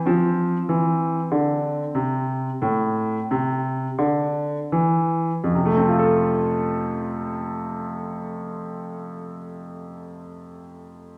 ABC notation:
X:1
M:4/4
L:1/8
Q:1/4=42
K:F
V:1 name="Grand piano"
C8 | [F,,C,A,CFA]8 |]
V:2 name="Grand piano" clef=bass
F, E, D, C, A,, C, D, E, | z8 |]